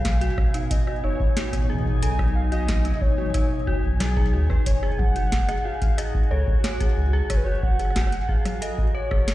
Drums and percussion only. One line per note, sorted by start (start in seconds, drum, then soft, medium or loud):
0.05 kick loud
0.05 snare loud
0.05 closed hi-hat medium
0.21 closed hi-hat soft
0.38 kick loud
0.38 cross-stick medium
0.54 closed hi-hat medium
0.71 kick loud
0.71 closed hi-hat medium
0.87 cross-stick medium
1.20 kick loud
1.37 snare loud
1.37 closed hi-hat medium
1.53 kick medium
1.53 cross-stick medium
1.53 closed hi-hat medium
1.59 kick medium
1.64 kick medium
1.70 kick medium
1.75 kick medium
1.81 kick medium
1.86 kick loud
2.03 closed hi-hat medium
2.19 kick loud
2.19 cross-stick medium
2.52 closed hi-hat soft
2.68 kick loud
2.68 cross-stick soft
2.68 snare loud
2.68 closed hi-hat medium
2.85 closed hi-hat soft
3.01 kick loud
3.18 high tom soft
3.22 high tom soft
3.26 high tom medium
3.30 high tom medium
3.34 kick loud
3.34 cross-stick soft
3.34 closed hi-hat medium
3.67 kick loud
3.71 kick medium
3.75 kick medium
3.80 kick medium
3.84 kick soft
3.88 kick soft
3.92 kick soft
3.96 kick soft
4.00 cross-stick medium
4.00 snare loud
4.00 closed hi-hat medium
4.17 kick loud
4.50 kick loud
4.50 cross-stick soft
4.66 kick loud
4.66 closed hi-hat medium
4.83 cross-stick medium
4.99 kick loud
4.99 high tom medium
5.16 closed hi-hat soft
5.32 kick loud
5.32 snare loud
5.32 closed hi-hat medium
5.49 cross-stick medium
5.49 closed hi-hat soft
5.82 kick loud
5.82 closed hi-hat soft
5.98 cross-stick soft
5.98 closed hi-hat medium
6.14 kick loud
6.47 kick loud
6.64 cross-stick soft
6.64 snare loud
6.64 closed hi-hat medium
6.80 kick loud
6.80 closed hi-hat soft
7.30 kick loud
7.30 cross-stick medium
7.30 closed hi-hat medium
7.63 kick loud
7.79 cross-stick soft
7.79 closed hi-hat soft
7.85 cross-stick soft
7.90 cross-stick soft
7.96 kick loud
7.96 cross-stick soft
7.96 snare loud
7.96 closed hi-hat medium
8.01 cross-stick soft
8.07 cross-stick soft
8.12 closed hi-hat soft
8.29 kick loud
8.45 cross-stick medium
8.45 closed hi-hat soft
8.45 high tom medium
8.62 closed hi-hat medium
8.78 kick loud
9.11 kick loud
9.11 cross-stick medium
9.28 snare loud
9.28 closed hi-hat medium